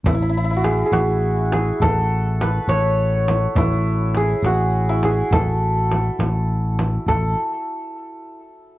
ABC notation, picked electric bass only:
X:1
M:6/8
L:1/8
Q:3/8=68
K:none
V:1 name="Picked electric bass" clef=bass
A,,,3 A,,,3 | A,,,3 A,,,3 | A,,,3 A,,,3 | A,,,3 A,,,3 |
A,,, z4 z |]